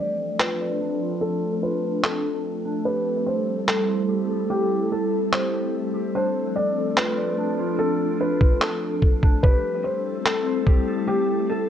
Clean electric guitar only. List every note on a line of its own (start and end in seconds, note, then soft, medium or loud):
0.00 0.80 D4 medium
0.39 1.00 F4 medium
0.60 1.83 D5 medium
0.81 2.03 D4 medium
1.02 1.61 F4 medium
1.62 2.86 F4 medium
2.04 2.64 D4 medium
2.65 2.86 D4 medium
2.86 4.08 G4 medium
3.68 4.29 A4 medium
3.89 5.12 C5 medium
4.09 5.32 G4 medium
4.30 4.91 A4 medium
4.92 6.15 A4 medium
5.33 5.93 G4 medium
5.94 6.15 G4 medium
6.15 7.37 D4 medium
6.97 7.58 F4 medium
7.18 8.41 D5 medium
7.38 8.60 D4 medium
7.59 8.19 F4 medium
8.20 9.43 F4 medium
8.62 9.22 D4 medium
9.23 9.44 D4 medium
9.44 10.65 G4 medium
10.26 10.87 A4 medium
10.46 11.69 C5 medium
10.67 11.69 G4 medium
10.88 11.48 A4 medium
11.49 11.69 A4 medium